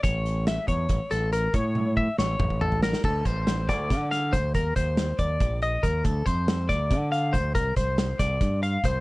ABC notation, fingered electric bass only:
X:1
M:7/8
L:1/16
Q:1/4=140
K:Aphr
V:1 name="Fingered electric bass" clef=bass
A,,,6 E,,2 A,,, z A,,,4 | A,,6 A,,,2 A,,,6 | [K:Dphr] D,,2 A,,,4 D,,2 D,4 D,,2 | E,,2 E,,4 E,,2 B,,,4 E,,2 |
D,,2 F,,4 D,,2 D,4 D,,2 | C,,2 C,,4 C,,2 G,,4 C,,2 |]